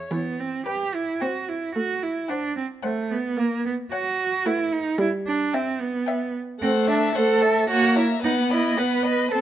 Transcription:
Already playing: violin C#5
0.11 viola E3, cello B3
0.40 cello C4
0.66 cello G4, violin B4 G5
0.94 cello E4
1.20 viola C4, cello F#4, violin C5 G5
1.49 cello E4
1.75 viola A3, cello F#4
2.03 cello E4
2.28 cello D4, violin C5 F#5
2.57 cello C4
2.82 cello A3, violin C5 F#5
3.11 cello B3
3.37 viola A#3, cello A#3
3.66 cello B3
3.92 cello F#4, violin C#5 F#5
4.46 viola A3, cello E4, violin B4 F#5
4.73 cello D#4
4.98 viola G3, cello E4
5.27 cello D4
5.53 cello C4, violin E5 G5
5.81 cello B3
6.06 violin E5 G5
6.60 viola A3, cello C4, violin C5 F#5
6.87 cello D4, violin E5 A5
7.15 viola A3, cello A4, violin C5 F#5
7.42 violin E5 A5
7.69 viola A#3, cello F#4, violin C#5 F#5
7.96 cello E4, violin E5 A#5
8.22 viola B3, cello D#4, violin B4 F#5
8.50 cello E4, violin D#5 B5
8.77 viola B3, violin B4 F#5, cello B4
9.03 violin D#5 B5
9.31 viola C4, cello A4, violin C5 A5

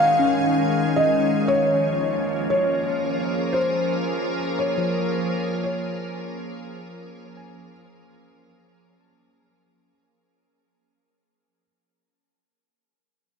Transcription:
Already playing: ambient pad D#3 G#3 C#4 C#5 G#5, tine electric piano D#4 D#5, felt piano F5
0.19 tine electric piano C#4
0.96 felt piano D#5
1.47 ambient pad F3, felt piano C#5
1.77 ambient pad A#3
2.50 felt piano C#5
2.56 ambient pad G#4 A#4
3.53 felt piano C5
4.59 felt piano C#5
4.78 tine electric piano F3
5.64 felt piano C#5
7.37 tine electric piano G#5

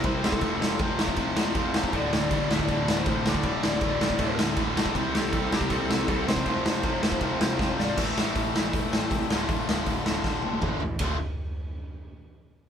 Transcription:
0.04 picked electric bass C2, distorted electric guitar C3 G3 C4, lead electric guitar C5, kick, crash
0.22 picked electric bass C2, distorted electric guitar C3 G3 C4, lead electric guitar A4, snare
0.32 kick
0.41 picked electric bass F1, distorted electric guitar F2 C3 F3, kick, crash
0.62 picked electric bass F1, snare
0.79 picked electric bass F1, distorted electric guitar F2 C3 F3, kick, crash
0.99 picked electric bass F1, distorted electric guitar F2 C3 F3, snare
1.08 kick
1.16 picked electric bass F1, distorted electric guitar F2 C3 F3, kick, crash
1.36 distorted electric guitar F2 C3 F3, snare
1.55 picked electric bass F1, distorted electric guitar F2 C3 F3, kick, crash
1.74 distorted electric guitar F2 C3 F3, picked electric bass F2, snare
1.84 kick
1.93 picked electric bass D1, distorted electric guitar D2 A2 D3, lead electric guitar D5, kick, crash
2.13 picked electric bass D1, lead electric guitar D5, snare
2.31 picked electric bass D1, distorted electric guitar D2 A2 D3, kick, crash
2.50 picked electric bass D1, distorted electric guitar D2 A2 D3, snare
2.54 lead electric guitar E5
2.59 lead electric guitar D5, kick
2.68 picked electric bass D1, distorted electric guitar D2 A2 D3, kick, crash
2.88 distorted electric guitar D2 A2 D3, snare
3.00 lead electric guitar C5
3.06 picked electric bass D1, distorted electric guitar D2 A2 D3, lead electric guitar C5, kick, crash
3.26 picked electric bass D2, distorted electric guitar D2 A2 D3, lead electric guitar D5, snare
3.34 kick
3.43 picked electric bass D1, distorted electric guitar D2 A2 D3, kick, crash
3.63 picked electric bass D1, lead electric guitar D5, snare
3.81 picked electric bass D1, distorted electric guitar D2 A2 D3, kick, crash
4.01 picked electric bass D1, distorted electric guitar D2 A2 D3, snare
4.10 kick
4.19 picked electric bass D1, distorted electric guitar D2 A2 D3, kick, crash
4.37 distorted electric guitar D2 A2 D3, snare
4.56 picked electric bass D1, distorted electric guitar D2 A2 D3, kick, crash
4.76 picked electric bass B1, distorted electric guitar D2 A2 D3, snare
4.86 kick
4.95 picked electric bass C2, distorted electric guitar C3 G3 C4, kick, crash
5.15 picked electric bass C2, lead electric guitar A4, snare
5.32 picked electric bass C2, distorted electric guitar C3 G3 C4, kick, crash
5.52 picked electric bass C2, distorted electric guitar C3 G3 C4, lead electric guitar G4, snare
5.61 kick
5.70 picked electric bass C2, distorted electric guitar C3 G3 C4, lead electric guitar A4, kick, crash
5.89 distorted electric guitar C3 G3 C4, snare
6.08 picked electric bass C2, distorted electric guitar C3 G3 C4, lead electric guitar A4, kick, crash
6.26 picked electric bass C2, distorted electric guitar C3 G3 C4, lead electric guitar C5, snare
6.36 kick
6.46 picked electric bass F1, distorted electric guitar F2 C3 F3, kick, crash
6.66 picked electric bass F1, snare
6.83 picked electric bass F1, distorted electric guitar F2 C3 F3, kick, crash
7.02 picked electric bass F1, distorted electric guitar F2 C3 F3, snare
7.12 kick
7.21 picked electric bass F1, distorted electric guitar F2 C3 F3, kick, crash
7.39 distorted electric guitar F2 C3 F3, snare
7.59 picked electric bass F1, distorted electric guitar F2 C3 F3, kick, snare
7.79 picked electric bass G#1, distorted electric guitar F2 C3 F3, lead electric guitar D5, snare
7.96 picked electric bass A1, distorted electric guitar A2 E3 A3 C4 E4 A4, kick, crash
8.17 picked electric bass A1, snare
8.36 picked electric bass A1, kick, open hi-hat
8.56 picked electric bass A1, snare
8.73 picked electric bass E1, kick, open hi-hat
8.93 picked electric bass A1, snare
9.11 picked electric bass C2, kick, open hi-hat
9.30 picked electric bass D1, distorted electric guitar D2 A2 D3 A3 F4, snare
9.49 picked electric bass D1, kick, open hi-hat
9.69 picked electric bass D1, snare
9.86 picked electric bass D1, kick, open hi-hat
10.06 picked electric bass D1, snare
10.24 picked electric bass D1, kick, snare
10.42 picked electric bass D1, high tom
10.62 picked electric bass A1, distorted electric guitar D2 A2, kick, mid tom
10.66 distorted electric guitar D3
10.80 picked electric bass A1, floor tom
10.99 picked electric bass D1, distorted electric guitar D2 A2 D3 A3 F4, kick, ride bell

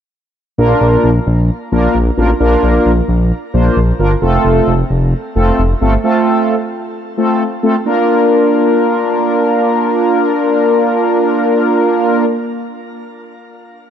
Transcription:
0.58 analog synth bass A#1, analog polysynth A#3 D4 F4 A#4
0.81 analog synth bass A#1
1.04 analog synth bass A#1
1.26 analog synth bass A#1
1.72 analog synth bass A#1, analog polysynth A#3 D4 F4 A#4
1.95 analog synth bass A#1
2.17 analog synth bass A1, analog polysynth A#3 D4 F4 A#4
2.40 analog synth bass A#1, analog polysynth A#3 D4 F4 A#4
2.63 analog synth bass A#1
2.85 analog synth bass A#1
3.08 analog synth bass A#1
3.54 analog synth bass A#1, analog polysynth A#3 D4 F4 C5
3.76 analog synth bass A#1
3.99 analog synth bass G1, analog polysynth A#3 D4 F4 A#4
4.22 analog synth bass F1, analog polysynth A3 C4 F4 A4
4.45 analog synth bass F1
4.67 analog synth bass F1
4.90 analog synth bass F1
5.36 analog synth bass F1, analog polysynth A3 C4 F4 A4
5.58 analog synth bass F1
5.81 analog synth bass G1, analog polysynth A3 C4 F4 A4
6.04 analog polysynth A3 C4 F4 A4
7.17 analog polysynth A3 C4 F4 A4
7.63 analog polysynth A3 C4 F4 A4
7.86 analog polysynth A#3 D4 F4 A#4

